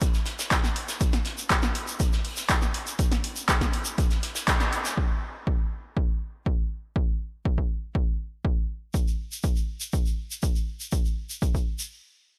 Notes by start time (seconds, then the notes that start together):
0.01 kick, closed hi-hat, shaker
0.14 snare, shaker
0.26 snare, closed hi-hat, open hi-hat
0.39 snare, closed hi-hat, shaker
0.51 kick, snare, clap, closed hi-hat, shaker
0.63 snare, shaker
0.76 closed hi-hat, open hi-hat
0.88 snare, closed hi-hat, shaker
1.01 kick, closed hi-hat, shaker
1.13 snare, closed hi-hat, shaker
1.25 snare, closed hi-hat, open hi-hat
1.38 shaker
1.50 kick, snare, clap, closed hi-hat, shaker
1.62 snare, shaker
1.75 closed hi-hat, open hi-hat
1.88 closed hi-hat, shaker
2.00 kick, closed hi-hat, shaker
2.12 snare, shaker
2.24 open hi-hat
2.37 snare, closed hi-hat, shaker
2.49 kick, snare, clap, closed hi-hat, shaker
2.62 snare, shaker
2.74 closed hi-hat, open hi-hat
2.87 closed hi-hat, shaker
2.99 kick, closed hi-hat, shaker
3.12 snare, open hi-hat, shaker
3.24 closed hi-hat, open hi-hat
3.36 closed hi-hat, shaker
3.48 kick, snare, clap, closed hi-hat, shaker
3.61 kick, snare, closed hi-hat, shaker
3.73 closed hi-hat, open hi-hat
3.85 closed hi-hat, shaker
3.98 kick, closed hi-hat, shaker
4.10 snare, closed hi-hat, shaker
4.23 snare, closed hi-hat, open hi-hat
4.35 snare, closed hi-hat, shaker
4.47 kick, snare, clap, closed hi-hat, shaker
4.60 snare, closed hi-hat, shaker
4.73 closed hi-hat, open hi-hat
4.85 snare, closed hi-hat, shaker
4.97 kick
5.47 kick
5.97 kick
6.46 kick
6.96 kick
7.45 kick
7.58 kick
7.95 kick
8.45 kick
8.94 kick, shaker
9.08 shaker
9.32 shaker
9.43 kick, shaker
9.56 shaker
9.81 shaker
9.93 kick, shaker
10.06 shaker
10.31 shaker
10.42 kick, shaker
10.55 shaker
10.80 shaker
10.92 kick, shaker
11.05 shaker
11.30 shaker
11.42 kick, shaker
11.55 kick, shaker
11.79 shaker